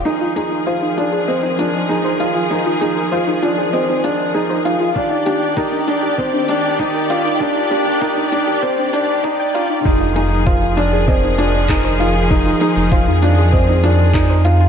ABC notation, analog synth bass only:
X:1
M:4/4
L:1/16
Q:1/4=98
K:Fdor
V:1 name="Analog synth bass" clef=bass
F,,,16- | F,,,2 z F,,,2 F,,8- F,,3 | E,,,16- | E,,,2 z12 z2 |
F,,,16- | F,,,2 z F,,,2 F,,8- F,,3 |]